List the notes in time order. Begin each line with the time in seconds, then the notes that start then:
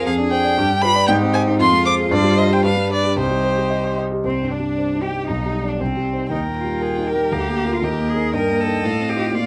Already playing: G#4
0.06 F2 G#4 F5
0.18 D4
0.31 C5 G5
0.45 D5
0.58 G2 G4
0.70 D4
0.81 F4 B4 B5
0.96 D5
1.07 G#2 D#4 G5
1.22 C4
1.34 C5 G#5
1.48 D#4
1.59 F2 F4 C6
1.72 G#3
1.86 C5 D6
1.98 G#4
2.11 G2 C5 D5
2.23 G3
2.37 C5 D#5
2.50 G4 G5
2.63 G2 D4 B4 F5
2.76 G3
2.90 B4 D5
3.03 G4
3.17 C2 D#4 G4 C5
3.30 G3
3.44 C5
3.58 G4
3.70 D#5
3.84 C6
3.98 D#5
4.11 G4
4.24 C2 C4
4.42 G2
4.50 D4
4.59 G3
4.78 C5
4.95 D#4
5.02 G4
5.11 G3
5.27 B1 D#4
5.45 G3
5.63 D4 D5
5.68 D4
5.79 C2 C4
5.97 G3
6.13 D#4 C5
6.30 D#2 D#4 A#4 G5
6.48 A#2
6.57 F4
6.64 G3
6.81 G#4 A#4
6.98 D#4
7.07 G4 A#4
7.15 G3
7.32 D2 G4 A#4 F5
7.48 A#3
7.65 F4 A#4
7.73 F4
7.82 D#2 G4 A#4 D#5
7.98 A#3
8.10 G#4
8.15 D#4 A#4
8.32 G2 A#4 D#5 G5
8.50 A#3
8.60 A4
8.66 D#4 A#4
8.83 A2 F5
9.00 C4
9.10 G4
9.16 D#4 F4
9.32 A#2 F4 D5 F5